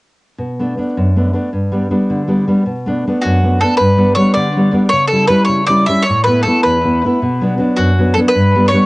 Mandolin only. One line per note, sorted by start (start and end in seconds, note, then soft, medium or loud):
3.22 3.58 F#4 medium
3.61 3.77 A4 medium
3.77 4.14 B4 medium
4.15 4.33 C#5 medium
4.34 4.74 D5 medium
4.89 5.07 C#5 medium
5.07 5.27 A4 medium
5.27 5.44 B4 medium
5.45 5.66 C#5 medium
5.66 5.84 D5 medium
5.86 6.04 E5 medium
6.02 6.22 C#5 medium
6.24 6.42 B4 medium
6.43 6.60 A4 medium
6.63 7.03 B4 medium
7.77 8.13 F#4 medium
8.14 8.19 A4 medium
8.28 8.67 B4 medium
8.68 8.86 C#5 medium